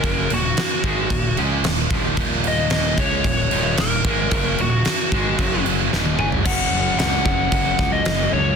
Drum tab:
CC |x-x-x-x-x-x-x-x-|x-x-x-x-x-x-x-x-|x-x-x-x-x-x-----|x---x---x---x---|
SD |----o-------o---|----o-------o---|----o-------o---|----o-----o-o---|
T1 |----------------|----------------|-------------o--|----------------|
T2 |----------------|----------------|--------------o-|----------------|
FT |----------------|----------------|---------------o|----------------|
BD |o-----o-o-----o-|o-----o-o-----o-|o-----o-o-------|o-----o-o-o-----|